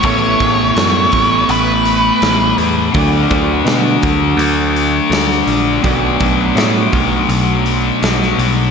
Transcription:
<<
  \new Staff \with { instrumentName = "Lead electric guitar" } { \time 4/4 \key a \major \tempo 4 = 83 cis''2 b'4. r8 | r1 | r1 | }
  \new Staff \with { instrumentName = "Clean electric guitar" } { \time 4/4 \key a \major <a b e' a' cis''>1 | <d fis a d' fis' d''>1 | <b, fis a d' fis' d''>1 | }
  \new Staff \with { instrumentName = "Distorted electric guitar" } { \clef bass \time 4/4 \key a \major <a, e a>1 | <d a d'>1 | <b, fis b>1 | }
  \new Staff \with { instrumentName = "Picked electric bass" } { \clef bass \time 4/4 \key a \major a,,8 a,,8 fis,8 a,,8 a,,4 a,,8 e,8 | d,8 d,8 b,8 d,8 d,4 d,8 bes,,8 | b,,8 b,,8 a,8 b,,8 b,,4 b,,8 b,,8 | }
  \new DrumStaff \with { instrumentName = "Drums" } \drummode { \time 4/4 <hho bd>8 <hho bd>8 <hho sn>8 <hho bd>8 hho8 hho8 <hho sn>8 hho8 | <hho bd>8 <hho bd>8 <hho sn>8 <hho bd>8 hho8 hho8 <hho sn>16 sn16 hho8 | <hho bd>8 <hho bd>8 <hho sn>8 <hho bd>8 hho8 hho8 <hho sn>16 sn16 hho8 | }
>>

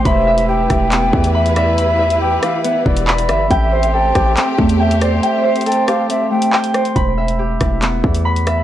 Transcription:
<<
  \new Staff \with { instrumentName = "Flute" } { \time 4/4 \key e \minor \tempo 4 = 139 e''4 g''2 e''8 d''8 | e''4 g''8 f''8 e''8 d''4. | e''4 g''2 e''8 d''8 | e''4 g''8 f''8 e''8 g''4. |
r1 | }
  \new Staff \with { instrumentName = "Harp" } { \time 4/4 \key e \minor b''8 e''8 g'8 e'8 b8 e8 b''8 e''8 | b''8 e''8 g'8 e'8 b8 e8 b''8 e''8 | g''8 c''8 a'8 g'8 c'8 a8 g''8 c''8 | g''8 c''8 a'8 g'8 c'8 a8 g''8 c''8 |
b''8 e''8 g'8 e'8 b8 e8 b''8 e''8 | }
  \new Staff \with { instrumentName = "String section" } { \time 4/4 \key e \minor <e e' g' b'>1~ | <e e' g' b'>1 | <a c' g'>1~ | <a c' g'>1 |
r1 | }
  \new Staff \with { instrumentName = "808-style bass" } { \clef bass \time 4/4 \key e \minor e,,4. e,,4 e,4.~ | e,4. r4 e,,4 g,,8 | a,,4. a,,8 r8 e,4. | r1 |
e,,4. e,,4 e,4. | }
  \new DrumStaff \with { instrumentName = "Drums" } \drummode { \time 4/4 <hh bd>8. hh16 r8 <hh bd ss>8 <hc hh>8 bd16 hh16 r16 hh16 <hh ss>8 | hh8. hh16 r8 <hh ss>8 hh8 bd16 hh16 hc16 hh16 <hh ss>8 | <hh bd>8. hh16 r8 <hh bd ss>8 <hc hh>8 bd16 hh16 r16 hh16 <hh ss>8 | hh8. hh32 hh32 hh32 hh16. <hh ss>8 hh8. hh16 hc16 hh16 <hh ss>16 hh16 |
<hh bd>8. hh16 r8 <hh bd ss>8 <hc hh>8 bd16 hh16 r16 hh16 <hh ss>8 | }
>>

